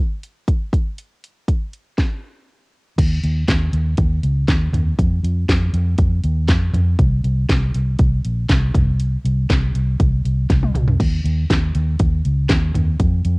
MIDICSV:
0, 0, Header, 1, 3, 480
1, 0, Start_track
1, 0, Tempo, 500835
1, 938, Time_signature, 4, 2, 24, 8
1, 12832, End_track
2, 0, Start_track
2, 0, Title_t, "Fingered electric bass"
2, 0, Program_c, 0, 33
2, 2855, Note_on_c, 0, 39, 80
2, 3054, Note_off_c, 0, 39, 0
2, 3100, Note_on_c, 0, 39, 84
2, 3297, Note_off_c, 0, 39, 0
2, 3336, Note_on_c, 0, 39, 78
2, 3534, Note_off_c, 0, 39, 0
2, 3574, Note_on_c, 0, 39, 77
2, 3773, Note_off_c, 0, 39, 0
2, 3816, Note_on_c, 0, 39, 86
2, 4014, Note_off_c, 0, 39, 0
2, 4057, Note_on_c, 0, 37, 75
2, 4255, Note_off_c, 0, 37, 0
2, 4294, Note_on_c, 0, 39, 85
2, 4493, Note_off_c, 0, 39, 0
2, 4529, Note_on_c, 0, 39, 85
2, 4730, Note_off_c, 0, 39, 0
2, 4781, Note_on_c, 0, 41, 78
2, 4977, Note_off_c, 0, 41, 0
2, 5015, Note_on_c, 0, 41, 80
2, 5213, Note_off_c, 0, 41, 0
2, 5259, Note_on_c, 0, 41, 86
2, 5456, Note_off_c, 0, 41, 0
2, 5495, Note_on_c, 0, 41, 82
2, 5693, Note_off_c, 0, 41, 0
2, 5735, Note_on_c, 0, 41, 84
2, 5933, Note_off_c, 0, 41, 0
2, 5979, Note_on_c, 0, 39, 85
2, 6214, Note_off_c, 0, 39, 0
2, 6214, Note_on_c, 0, 41, 93
2, 6413, Note_off_c, 0, 41, 0
2, 6453, Note_on_c, 0, 41, 86
2, 6653, Note_off_c, 0, 41, 0
2, 6698, Note_on_c, 0, 36, 93
2, 6895, Note_off_c, 0, 36, 0
2, 6937, Note_on_c, 0, 36, 86
2, 7135, Note_off_c, 0, 36, 0
2, 7180, Note_on_c, 0, 36, 85
2, 7376, Note_off_c, 0, 36, 0
2, 7421, Note_on_c, 0, 36, 78
2, 7617, Note_off_c, 0, 36, 0
2, 7661, Note_on_c, 0, 36, 82
2, 7857, Note_off_c, 0, 36, 0
2, 7905, Note_on_c, 0, 34, 72
2, 8099, Note_off_c, 0, 34, 0
2, 8140, Note_on_c, 0, 36, 98
2, 8337, Note_off_c, 0, 36, 0
2, 8382, Note_on_c, 0, 36, 85
2, 8774, Note_off_c, 0, 36, 0
2, 8862, Note_on_c, 0, 36, 84
2, 9057, Note_off_c, 0, 36, 0
2, 9103, Note_on_c, 0, 36, 84
2, 9298, Note_off_c, 0, 36, 0
2, 9340, Note_on_c, 0, 36, 79
2, 9536, Note_off_c, 0, 36, 0
2, 9581, Note_on_c, 0, 36, 84
2, 9777, Note_off_c, 0, 36, 0
2, 9821, Note_on_c, 0, 36, 73
2, 10017, Note_off_c, 0, 36, 0
2, 10061, Note_on_c, 0, 36, 89
2, 10257, Note_off_c, 0, 36, 0
2, 10293, Note_on_c, 0, 36, 84
2, 10493, Note_off_c, 0, 36, 0
2, 10541, Note_on_c, 0, 39, 85
2, 10737, Note_off_c, 0, 39, 0
2, 10776, Note_on_c, 0, 39, 83
2, 10974, Note_off_c, 0, 39, 0
2, 11024, Note_on_c, 0, 39, 81
2, 11219, Note_off_c, 0, 39, 0
2, 11263, Note_on_c, 0, 39, 93
2, 11458, Note_off_c, 0, 39, 0
2, 11498, Note_on_c, 0, 39, 89
2, 11695, Note_off_c, 0, 39, 0
2, 11740, Note_on_c, 0, 37, 74
2, 11936, Note_off_c, 0, 37, 0
2, 11978, Note_on_c, 0, 39, 86
2, 12175, Note_off_c, 0, 39, 0
2, 12219, Note_on_c, 0, 39, 87
2, 12416, Note_off_c, 0, 39, 0
2, 12456, Note_on_c, 0, 41, 87
2, 12654, Note_off_c, 0, 41, 0
2, 12697, Note_on_c, 0, 41, 85
2, 12832, Note_off_c, 0, 41, 0
2, 12832, End_track
3, 0, Start_track
3, 0, Title_t, "Drums"
3, 224, Note_on_c, 9, 42, 56
3, 320, Note_off_c, 9, 42, 0
3, 459, Note_on_c, 9, 36, 83
3, 462, Note_on_c, 9, 42, 65
3, 555, Note_off_c, 9, 36, 0
3, 558, Note_off_c, 9, 42, 0
3, 699, Note_on_c, 9, 36, 86
3, 708, Note_on_c, 9, 42, 59
3, 795, Note_off_c, 9, 36, 0
3, 804, Note_off_c, 9, 42, 0
3, 942, Note_on_c, 9, 42, 65
3, 1038, Note_off_c, 9, 42, 0
3, 1188, Note_on_c, 9, 42, 57
3, 1283, Note_off_c, 9, 42, 0
3, 1420, Note_on_c, 9, 36, 80
3, 1422, Note_on_c, 9, 42, 69
3, 1515, Note_off_c, 9, 36, 0
3, 1518, Note_off_c, 9, 42, 0
3, 1661, Note_on_c, 9, 42, 58
3, 1756, Note_off_c, 9, 42, 0
3, 1898, Note_on_c, 9, 38, 67
3, 1899, Note_on_c, 9, 36, 79
3, 1994, Note_off_c, 9, 38, 0
3, 1995, Note_off_c, 9, 36, 0
3, 2859, Note_on_c, 9, 36, 89
3, 2861, Note_on_c, 9, 42, 65
3, 2861, Note_on_c, 9, 49, 75
3, 2955, Note_off_c, 9, 36, 0
3, 2957, Note_off_c, 9, 42, 0
3, 2957, Note_off_c, 9, 49, 0
3, 3100, Note_on_c, 9, 42, 63
3, 3196, Note_off_c, 9, 42, 0
3, 3338, Note_on_c, 9, 36, 87
3, 3338, Note_on_c, 9, 42, 76
3, 3340, Note_on_c, 9, 38, 89
3, 3351, Note_on_c, 9, 39, 81
3, 3434, Note_off_c, 9, 36, 0
3, 3434, Note_off_c, 9, 42, 0
3, 3436, Note_off_c, 9, 38, 0
3, 3447, Note_off_c, 9, 39, 0
3, 3578, Note_on_c, 9, 42, 66
3, 3673, Note_off_c, 9, 42, 0
3, 3809, Note_on_c, 9, 42, 77
3, 3816, Note_on_c, 9, 36, 95
3, 3905, Note_off_c, 9, 42, 0
3, 3912, Note_off_c, 9, 36, 0
3, 4059, Note_on_c, 9, 42, 62
3, 4154, Note_off_c, 9, 42, 0
3, 4298, Note_on_c, 9, 36, 96
3, 4298, Note_on_c, 9, 38, 89
3, 4300, Note_on_c, 9, 42, 76
3, 4309, Note_on_c, 9, 39, 75
3, 4393, Note_off_c, 9, 36, 0
3, 4393, Note_off_c, 9, 38, 0
3, 4396, Note_off_c, 9, 42, 0
3, 4405, Note_off_c, 9, 39, 0
3, 4537, Note_on_c, 9, 43, 56
3, 4545, Note_on_c, 9, 42, 60
3, 4633, Note_off_c, 9, 43, 0
3, 4640, Note_off_c, 9, 42, 0
3, 4779, Note_on_c, 9, 36, 88
3, 4783, Note_on_c, 9, 42, 74
3, 4875, Note_off_c, 9, 36, 0
3, 4879, Note_off_c, 9, 42, 0
3, 5025, Note_on_c, 9, 42, 62
3, 5121, Note_off_c, 9, 42, 0
3, 5260, Note_on_c, 9, 36, 89
3, 5262, Note_on_c, 9, 42, 77
3, 5263, Note_on_c, 9, 38, 101
3, 5274, Note_on_c, 9, 39, 81
3, 5356, Note_off_c, 9, 36, 0
3, 5358, Note_off_c, 9, 42, 0
3, 5359, Note_off_c, 9, 38, 0
3, 5370, Note_off_c, 9, 39, 0
3, 5499, Note_on_c, 9, 42, 63
3, 5595, Note_off_c, 9, 42, 0
3, 5731, Note_on_c, 9, 42, 80
3, 5737, Note_on_c, 9, 36, 94
3, 5827, Note_off_c, 9, 42, 0
3, 5832, Note_off_c, 9, 36, 0
3, 5976, Note_on_c, 9, 42, 60
3, 6072, Note_off_c, 9, 42, 0
3, 6215, Note_on_c, 9, 38, 89
3, 6217, Note_on_c, 9, 36, 90
3, 6217, Note_on_c, 9, 42, 77
3, 6226, Note_on_c, 9, 39, 74
3, 6311, Note_off_c, 9, 38, 0
3, 6313, Note_off_c, 9, 36, 0
3, 6313, Note_off_c, 9, 42, 0
3, 6322, Note_off_c, 9, 39, 0
3, 6456, Note_on_c, 9, 43, 54
3, 6463, Note_on_c, 9, 42, 63
3, 6552, Note_off_c, 9, 43, 0
3, 6559, Note_off_c, 9, 42, 0
3, 6698, Note_on_c, 9, 36, 92
3, 6698, Note_on_c, 9, 42, 68
3, 6794, Note_off_c, 9, 36, 0
3, 6794, Note_off_c, 9, 42, 0
3, 6941, Note_on_c, 9, 42, 62
3, 7037, Note_off_c, 9, 42, 0
3, 7181, Note_on_c, 9, 36, 96
3, 7182, Note_on_c, 9, 42, 77
3, 7184, Note_on_c, 9, 38, 99
3, 7195, Note_on_c, 9, 39, 82
3, 7277, Note_off_c, 9, 36, 0
3, 7278, Note_off_c, 9, 42, 0
3, 7280, Note_off_c, 9, 38, 0
3, 7291, Note_off_c, 9, 39, 0
3, 7422, Note_on_c, 9, 42, 67
3, 7518, Note_off_c, 9, 42, 0
3, 7654, Note_on_c, 9, 42, 75
3, 7659, Note_on_c, 9, 36, 95
3, 7750, Note_off_c, 9, 42, 0
3, 7755, Note_off_c, 9, 36, 0
3, 7902, Note_on_c, 9, 42, 64
3, 7998, Note_off_c, 9, 42, 0
3, 8141, Note_on_c, 9, 36, 93
3, 8141, Note_on_c, 9, 38, 95
3, 8143, Note_on_c, 9, 42, 72
3, 8152, Note_on_c, 9, 39, 76
3, 8237, Note_off_c, 9, 36, 0
3, 8237, Note_off_c, 9, 38, 0
3, 8239, Note_off_c, 9, 42, 0
3, 8248, Note_off_c, 9, 39, 0
3, 8380, Note_on_c, 9, 43, 58
3, 8382, Note_on_c, 9, 36, 89
3, 8387, Note_on_c, 9, 42, 68
3, 8476, Note_off_c, 9, 43, 0
3, 8478, Note_off_c, 9, 36, 0
3, 8483, Note_off_c, 9, 42, 0
3, 8623, Note_on_c, 9, 42, 71
3, 8719, Note_off_c, 9, 42, 0
3, 8870, Note_on_c, 9, 42, 66
3, 8966, Note_off_c, 9, 42, 0
3, 9104, Note_on_c, 9, 36, 97
3, 9105, Note_on_c, 9, 42, 78
3, 9107, Note_on_c, 9, 38, 91
3, 9118, Note_on_c, 9, 39, 80
3, 9200, Note_off_c, 9, 36, 0
3, 9201, Note_off_c, 9, 42, 0
3, 9202, Note_off_c, 9, 38, 0
3, 9214, Note_off_c, 9, 39, 0
3, 9346, Note_on_c, 9, 42, 66
3, 9442, Note_off_c, 9, 42, 0
3, 9582, Note_on_c, 9, 42, 74
3, 9583, Note_on_c, 9, 36, 94
3, 9678, Note_off_c, 9, 42, 0
3, 9679, Note_off_c, 9, 36, 0
3, 9828, Note_on_c, 9, 42, 63
3, 9924, Note_off_c, 9, 42, 0
3, 10063, Note_on_c, 9, 36, 91
3, 10063, Note_on_c, 9, 38, 51
3, 10064, Note_on_c, 9, 42, 80
3, 10159, Note_off_c, 9, 36, 0
3, 10159, Note_off_c, 9, 38, 0
3, 10160, Note_off_c, 9, 42, 0
3, 10188, Note_on_c, 9, 48, 54
3, 10284, Note_off_c, 9, 48, 0
3, 10303, Note_on_c, 9, 45, 73
3, 10307, Note_on_c, 9, 42, 63
3, 10399, Note_off_c, 9, 45, 0
3, 10403, Note_off_c, 9, 42, 0
3, 10425, Note_on_c, 9, 43, 77
3, 10521, Note_off_c, 9, 43, 0
3, 10542, Note_on_c, 9, 36, 85
3, 10545, Note_on_c, 9, 49, 61
3, 10638, Note_off_c, 9, 36, 0
3, 10641, Note_off_c, 9, 49, 0
3, 10788, Note_on_c, 9, 42, 63
3, 10884, Note_off_c, 9, 42, 0
3, 11023, Note_on_c, 9, 36, 92
3, 11028, Note_on_c, 9, 42, 81
3, 11030, Note_on_c, 9, 38, 99
3, 11041, Note_on_c, 9, 39, 84
3, 11119, Note_off_c, 9, 36, 0
3, 11124, Note_off_c, 9, 42, 0
3, 11125, Note_off_c, 9, 38, 0
3, 11137, Note_off_c, 9, 39, 0
3, 11259, Note_on_c, 9, 42, 68
3, 11355, Note_off_c, 9, 42, 0
3, 11494, Note_on_c, 9, 42, 80
3, 11498, Note_on_c, 9, 36, 100
3, 11589, Note_off_c, 9, 42, 0
3, 11594, Note_off_c, 9, 36, 0
3, 11739, Note_on_c, 9, 42, 63
3, 11834, Note_off_c, 9, 42, 0
3, 11972, Note_on_c, 9, 38, 96
3, 11974, Note_on_c, 9, 42, 80
3, 11978, Note_on_c, 9, 36, 94
3, 11983, Note_on_c, 9, 39, 74
3, 12067, Note_off_c, 9, 38, 0
3, 12070, Note_off_c, 9, 42, 0
3, 12073, Note_off_c, 9, 36, 0
3, 12079, Note_off_c, 9, 39, 0
3, 12214, Note_on_c, 9, 43, 57
3, 12221, Note_on_c, 9, 42, 71
3, 12310, Note_off_c, 9, 43, 0
3, 12317, Note_off_c, 9, 42, 0
3, 12455, Note_on_c, 9, 42, 73
3, 12456, Note_on_c, 9, 36, 90
3, 12551, Note_off_c, 9, 42, 0
3, 12552, Note_off_c, 9, 36, 0
3, 12696, Note_on_c, 9, 42, 67
3, 12792, Note_off_c, 9, 42, 0
3, 12832, End_track
0, 0, End_of_file